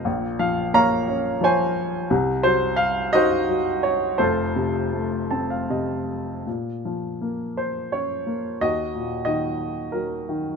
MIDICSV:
0, 0, Header, 1, 2, 480
1, 0, Start_track
1, 0, Key_signature, -5, "minor"
1, 0, Tempo, 684932
1, 34, Time_signature, 3, 2, 24, 8
1, 1954, Tempo, 704225
1, 2914, Tempo, 756620
1, 4354, Tempo, 726392
1, 5314, Tempo, 674157
1, 7197, End_track
2, 0, Start_track
2, 0, Title_t, "Grand piano"
2, 0, Program_c, 0, 0
2, 0, Control_c, 0, 64, 127
2, 32, Note_on_c, 0, 46, 61
2, 35, Note_on_c, 0, 34, 60
2, 44, Control_c, 0, 64, 0
2, 152, Control_c, 0, 64, 127
2, 276, Note_on_c, 0, 53, 54
2, 276, Note_on_c, 0, 77, 73
2, 509, Note_off_c, 0, 77, 0
2, 517, Note_on_c, 0, 58, 60
2, 519, Note_on_c, 0, 77, 71
2, 521, Note_on_c, 0, 73, 72
2, 521, Note_on_c, 0, 82, 102
2, 757, Note_on_c, 0, 61, 58
2, 977, Note_off_c, 0, 53, 0
2, 987, Note_on_c, 0, 53, 58
2, 995, Note_off_c, 0, 73, 0
2, 1006, Note_on_c, 0, 73, 71
2, 1007, Note_on_c, 0, 72, 67
2, 1010, Note_on_c, 0, 80, 87
2, 1016, Note_off_c, 0, 82, 0
2, 1213, Note_off_c, 0, 77, 0
2, 1448, Note_off_c, 0, 46, 0
2, 1449, Note_off_c, 0, 34, 0
2, 1449, Note_off_c, 0, 58, 0
2, 1452, Note_off_c, 0, 73, 0
2, 1453, Note_off_c, 0, 72, 0
2, 1454, Note_off_c, 0, 80, 0
2, 1455, Note_off_c, 0, 61, 0
2, 1456, Note_off_c, 0, 53, 0
2, 1474, Note_on_c, 0, 36, 66
2, 1477, Note_on_c, 0, 48, 68
2, 1485, Control_c, 0, 64, 0
2, 1598, Control_c, 0, 64, 127
2, 1706, Note_on_c, 0, 72, 93
2, 1713, Note_on_c, 0, 54, 62
2, 1932, Note_off_c, 0, 72, 0
2, 1937, Note_on_c, 0, 77, 94
2, 2185, Note_on_c, 0, 75, 102
2, 2187, Note_on_c, 0, 63, 62
2, 2188, Note_off_c, 0, 77, 0
2, 2199, Note_on_c, 0, 66, 80
2, 2202, Note_on_c, 0, 72, 74
2, 2418, Note_off_c, 0, 54, 0
2, 2429, Note_on_c, 0, 54, 46
2, 2664, Note_on_c, 0, 73, 80
2, 2681, Note_off_c, 0, 75, 0
2, 2885, Note_off_c, 0, 36, 0
2, 2886, Note_off_c, 0, 48, 0
2, 2890, Note_off_c, 0, 63, 0
2, 2891, Note_off_c, 0, 66, 0
2, 2892, Note_off_c, 0, 72, 0
2, 2899, Note_off_c, 0, 54, 0
2, 2903, Note_on_c, 0, 72, 80
2, 2908, Note_on_c, 0, 41, 60
2, 2909, Note_on_c, 0, 29, 58
2, 2914, Note_on_c, 0, 69, 56
2, 2918, Note_off_c, 0, 73, 0
2, 2921, Note_on_c, 0, 65, 60
2, 2922, Control_c, 0, 64, 0
2, 3043, Control_c, 0, 64, 127
2, 3144, Note_on_c, 0, 48, 53
2, 3382, Note_on_c, 0, 57, 46
2, 3617, Note_on_c, 0, 81, 57
2, 3620, Note_on_c, 0, 60, 44
2, 3732, Note_off_c, 0, 81, 0
2, 3743, Note_on_c, 0, 77, 49
2, 3837, Note_off_c, 0, 72, 0
2, 3842, Note_off_c, 0, 69, 0
2, 3845, Note_off_c, 0, 65, 0
2, 3858, Note_off_c, 0, 48, 0
2, 3858, Note_off_c, 0, 77, 0
2, 3868, Note_on_c, 0, 48, 45
2, 3871, Note_on_c, 0, 75, 51
2, 4325, Note_off_c, 0, 41, 0
2, 4326, Note_off_c, 0, 29, 0
2, 4329, Note_off_c, 0, 57, 0
2, 4330, Note_off_c, 0, 75, 0
2, 4332, Note_off_c, 0, 60, 0
2, 4339, Note_off_c, 0, 48, 0
2, 4354, Note_on_c, 0, 46, 46
2, 4362, Control_c, 0, 64, 0
2, 4489, Control_c, 0, 64, 127
2, 4609, Note_on_c, 0, 53, 37
2, 4848, Note_on_c, 0, 58, 39
2, 5086, Note_on_c, 0, 72, 55
2, 5316, Note_on_c, 0, 73, 74
2, 5323, Note_off_c, 0, 72, 0
2, 5323, Note_on_c, 0, 61, 39
2, 5535, Note_off_c, 0, 53, 0
2, 5550, Note_off_c, 0, 58, 0
2, 5560, Note_on_c, 0, 58, 37
2, 5773, Note_off_c, 0, 46, 0
2, 5792, Note_off_c, 0, 61, 0
2, 5795, Note_off_c, 0, 58, 0
2, 5806, Note_on_c, 0, 39, 44
2, 5808, Note_on_c, 0, 75, 91
2, 5809, Control_c, 0, 64, 0
2, 5816, Note_on_c, 0, 66, 58
2, 5817, Note_off_c, 0, 73, 0
2, 5949, Control_c, 0, 64, 127
2, 6049, Note_on_c, 0, 46, 42
2, 6250, Note_off_c, 0, 75, 0
2, 6261, Note_on_c, 0, 75, 78
2, 6272, Note_on_c, 0, 51, 49
2, 6484, Note_off_c, 0, 66, 0
2, 6739, Note_on_c, 0, 70, 57
2, 6749, Note_on_c, 0, 54, 43
2, 6753, Note_off_c, 0, 75, 0
2, 6965, Note_off_c, 0, 46, 0
2, 6990, Note_off_c, 0, 51, 0
2, 7001, Note_on_c, 0, 51, 42
2, 7082, Note_off_c, 0, 70, 0
2, 7197, Note_off_c, 0, 39, 0
2, 7197, Note_off_c, 0, 51, 0
2, 7197, Note_off_c, 0, 54, 0
2, 7197, End_track
0, 0, End_of_file